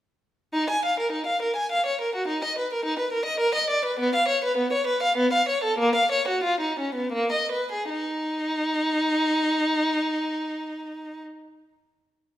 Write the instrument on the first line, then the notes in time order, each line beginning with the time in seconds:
violin
0.53 D#4
0.70 G#5
0.85 F5
1.00 A#4
1.12 D#4
1.26 F5
1.42 A#4
1.56 G#5
1.72 F5
1.86 C#5
2.01 A#4
2.15 F#4
2.28 D#4
2.44 D#5
2.58 B4
2.73 A#4
2.85 D#4
2.99 B4
3.13 A#4
3.25 D#5
3.40 A#4
3.55 D#5
3.70 D5
3.85 B4
4.00 B3
4.15 F5
4.28 C#5
4.44 B4
4.57 B3
4.73 C#5
4.87 B4
5.03 F5
5.17 B3
5.33 F5
5.49 C#5
5.64 A4
5.78 A#3
5.95 F5
6.12 C#5
6.28 F#4
6.44 F4
6.60 D#4
6.80 C#4
6.95 B3
7.12 A#3
7.32 D#5
7.52 B4
7.72 G#4
7.90 D#4